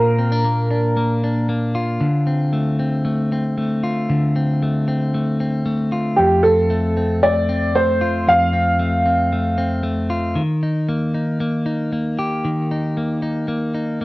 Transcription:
Already playing: clean electric guitar A#2 A#3 D4 F4, upright piano A#4
0.19 clean electric guitar C4
0.32 clean electric guitar D4
0.45 clean electric guitar A#3
0.71 clean electric guitar D4
0.97 clean electric guitar A#3
1.24 clean electric guitar D4
1.49 clean electric guitar A#3
1.75 clean electric guitar F4
2.01 clean electric guitar D3
2.27 clean electric guitar C4
2.53 clean electric guitar A3
2.79 clean electric guitar C4
3.05 clean electric guitar A3
3.32 clean electric guitar C4
3.58 clean electric guitar A3
3.84 clean electric guitar F4
4.10 clean electric guitar D3
4.36 clean electric guitar C4
4.63 clean electric guitar A3
4.88 clean electric guitar C4
5.14 clean electric guitar A3
5.40 clean electric guitar C4
5.66 clean electric guitar A3
5.92 clean electric guitar F4
6.17 clean electric guitar F2, upright piano G4
6.43 clean electric guitar C4, upright piano A4
6.70 clean electric guitar A3
6.97 clean electric guitar C4
7.23 clean electric guitar A3, upright piano D5
7.49 clean electric guitar C4
7.75 clean electric guitar A3, upright piano C5
8.01 clean electric guitar F4
8.28 clean electric guitar F2, upright piano F5
8.53 clean electric guitar C4
8.79 clean electric guitar A3
9.06 clean electric guitar C4
9.33 clean electric guitar A3
9.58 clean electric guitar C4
9.83 clean electric guitar A3
10.10 clean electric guitar F4
10.35 clean electric guitar D#3
10.63 clean electric guitar D#4
10.88 clean electric guitar A#3
11.14 clean electric guitar D#4
11.40 clean electric guitar A#3
11.66 clean electric guitar D#4
11.93 clean electric guitar A#3
12.19 clean electric guitar G4
12.45 clean electric guitar D#3
12.71 clean electric guitar D#4
12.97 clean electric guitar A#3
13.22 clean electric guitar D#4
13.48 clean electric guitar A#3
13.75 clean electric guitar D#4
14.01 clean electric guitar A#3

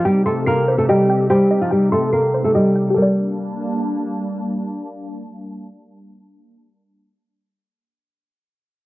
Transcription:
Already playing: analog synth pad C3 C4 D#4 G4, synth pluck C5 D#5
0.05 nylon-string guitar G3 G4, synth pluck G5
0.26 nylon-string guitar A3 A4, synth pluck C6
0.46 nylon-string guitar A#3 A#4, synth pluck C7
0.68 synth pluck C5
0.78 nylon-string guitar A3 A4
0.89 nylon-string guitar G3 G4, synth pluck D#5
1.09 synth pluck G5
1.30 nylon-string guitar G3 G4, synth pluck C5
1.51 synth pluck D#5
1.62 nylon-string guitar F3 F4
1.71 nylon-string guitar G3 G4, synth pluck G5
1.92 nylon-string guitar A3 A4, synth pluck C6
2.13 nylon-string guitar A#3 A#4, synth pluck C7
2.34 synth pluck C5
2.44 nylon-string guitar A3 A4
2.55 nylon-string guitar G3 G4, synth pluck D#5
2.76 synth pluck G5
2.90 synth pluck G4
2.94 nylon-string guitar G3, analog synth pad G3 A#3 D4 A5, synth pluck A4 A#4
3.02 synth pluck D5

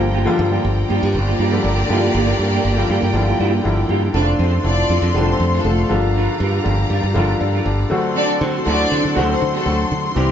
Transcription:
Already playing: fingered electric bass G1, grand piano D3 F3 G3 A#3 F4 C5, string section F3 D5 G5 A#5
0.02 muted clean electric guitar stroke
0.13 clean electric guitar A#3 F4 G4
0.25 grand piano D3 F3 G3 A#3 F4, muted clean electric guitar stroke
0.37 fingered electric bass G2, grand piano D3 F3 G3 A#3 F4, muted clean electric guitar stroke
0.51 grand piano D3 F3 G3 A#3 F4, clean electric guitar A#3 F4 G4
0.65 fingered electric bass G1
0.78 muted clean electric guitar stroke
0.89 fingered electric bass G2, clean electric guitar A#3 F4 G4, string section A#3 G4 D5
1.03 fingered electric bass G2, muted clean electric guitar stroke
1.14 fingered electric bass G1, muted clean electric guitar stroke
1.27 clean electric guitar A#3 F4 G4
1.39 fingered electric bass G2, clean electric guitar A#3 F4 G4
1.52 grand piano D3 F3 G3 A#3 G4, muted clean electric guitar stroke
1.64 fingered electric bass G1
1.78 muted clean electric guitar stroke
1.88 fingered electric bass G2, grand piano D3 F3 G3 A#3 E4, clean electric guitar A#3 F4 G4, string section G5
1.96 grand piano F4
2.03 muted clean electric guitar stroke
2.15 fingered electric bass G1, clean electric guitar A#3 F4 G4
2.28 muted clean electric guitar stroke
2.39 fingered electric bass G2, muted clean electric guitar stroke
2.53 clean electric guitar A#3 F4 G4
2.65 fingered electric bass G1
2.77 grand piano D3 F3 G3 A#3 F4, muted clean electric guitar stroke
2.89 fingered electric bass G2, clean electric guitar A#3 F4 G4
3.03 fingered electric bass G2, muted clean electric guitar stroke
3.13 fingered electric bass G1, grand piano D3 F3 G3 A#3 E4, muted clean electric guitar stroke
3.21 grand piano F4
3.27 clean electric guitar A#3 F4 G4
3.39 fingered electric bass G2, clean electric guitar A#3 F4 G4, grand piano D5
3.52 muted clean electric guitar stroke
3.64 fingered electric bass G1, grand piano D3 F3 G3 A#3 E4 F5
3.77 muted clean electric guitar stroke
3.89 fingered electric bass G2, clean electric guitar A#3 F4 G4, grand piano G5
4.02 muted clean electric guitar stroke
4.14 fingered electric bass F1, grand piano D3 F3 A3 C4 E4, clean electric guitar D4 F4 A4, string section D4 A4 D5 F5 C6
4.21 grand piano F4
4.38 fingered electric bass F2, string section C4 C5, clean electric guitar D4 F4 A4
4.51 clean electric guitar D4 F4 A4
4.63 fingered electric bass F1, grand piano D3 F3 A3 C4 E4, string section D4 D5
4.71 grand piano F4
4.77 muted clean electric guitar stroke
4.89 fingered electric bass F2, clean electric guitar D4 F4 A4
5.02 fingered electric bass F2, muted clean electric guitar stroke
5.14 fingered electric bass F1, grand piano D3 F3 G3 C4 D4, clean electric guitar D4 F4 A4
5.21 grand piano A3
5.28 string section C4 C5, muted clean electric guitar stroke
5.40 fingered electric bass F2, muted clean electric guitar stroke
5.53 string section A3 A4, clean electric guitar D4 F4 A4
5.64 fingered electric bass F1, grand piano D3 F3 A3 C4 F4, muted clean electric guitar stroke
5.80 muted clean electric guitar stroke
5.89 fingered electric bass G1, grand piano D3 F3 G3 A#3 F4, string section G4 A#5
6.04 muted clean electric guitar stroke
6.16 clean electric guitar D4 F4 A#4
6.40 fingered electric bass G2, clean electric guitar D4 F4 A#4
6.55 clean electric guitar D4 F4 A#4
6.63 fingered electric bass G1, grand piano D3 F3 G3 A#3 F4
6.80 muted clean electric guitar stroke
6.90 fingered electric bass G2, clean electric guitar D4 F4 A#4
7.04 fingered electric bass G2, muted clean electric guitar stroke
7.14 fingered electric bass G1, grand piano D3 F3 G3 A#3 F4, clean electric guitar D4 F4
7.18 clean electric guitar A#4
7.30 muted clean electric guitar stroke
7.40 fingered electric bass G2, grand piano A4 D5 F5, muted clean electric guitar stroke
7.54 clean electric guitar D4 F4 A#4
7.65 fingered electric bass G1, grand piano D4 G4 D5, muted clean electric guitar stroke
7.79 muted clean electric guitar stroke
7.90 grand piano D3 F#3 A3 C4 F#4 C5, fingered electric bass D3, string section A4 F#5 C6
8.05 muted clean electric guitar stroke
8.15 clean electric guitar C4 F#4 A4, string section D4 D5
8.40 fingered electric bass D3, string section C4 C5, clean electric guitar C4 F#4 A4
8.53 clean electric guitar C4 F#4 A4
8.65 fingered electric bass D2, grand piano D3 F#3 A3 C4 E4, string section D4 D5
8.73 grand piano F#4
8.78 muted clean electric guitar stroke
8.90 fingered electric bass D3, clean electric guitar C4 F#4 A4
9.03 fingered electric bass D3, muted clean electric guitar stroke
9.14 fingered electric bass D2, grand piano D3 F#3 A3 C4 F#4, clean electric guitar C4 F#4 A4
9.27 string section C4 C5, muted clean electric guitar stroke
9.40 fingered electric bass D3, muted clean electric guitar stroke
9.54 string section A3 A4, clean electric guitar C4 F#4 A4
9.65 fingered electric bass D2, grand piano D3 F#3 A3 C4 F#4, muted clean electric guitar stroke
9.80 muted clean electric guitar stroke
9.92 fingered electric bass D3
10.04 muted clean electric guitar stroke
10.15 fingered electric bass C2, grand piano E3 G3 A#3 C4 G4, clean electric guitar C4 E4 A#4, string section A#4 E5 G5

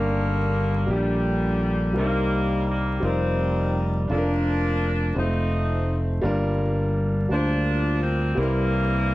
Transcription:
Already playing: fingered electric bass G1, grand piano G2 G3 A#3 D4 G4 A#4, saxophone section D3 D#3 A#3
0.86 fingered electric bass A#1, grand piano G3 A#3 D4 G4
0.91 saxophone section A#2 D3 G3
1.93 fingered electric bass C2, grand piano C3 G3 A#3 C4 D4 A#4, saxophone section D#3 G3 A#3
2.03 grand piano D#4
2.69 saxophone section A#3
3.00 fingered electric bass F1, saxophone section D#3 C4, grand piano G3 C4 D#4 F4
3.04 saxophone section G3, grand piano A#4
4.08 fingered electric bass F1, saxophone section F3 A#3 D4, grand piano D4 F4
4.12 grand piano A4
4.18 grand piano A#4
5.14 fingered electric bass F1, grand piano G#3 C4 D#4 F4 C5, saxophone section C4 D#4
5.18 saxophone section A3, grand piano A3
6.21 fingered electric bass G1, grand piano G2 G3 A#3 D4 F4 A#4
7.29 fingered electric bass D2, saxophone section F3 A#3 D4, grand piano G3 A#3 D4 F4
7.33 grand piano C5
8.02 saxophone section C4
8.35 fingered electric bass C2, grand piano C3 G3 A#3 C4 E4, saxophone section A#3
8.39 saxophone section E3 G3, grand piano A#4

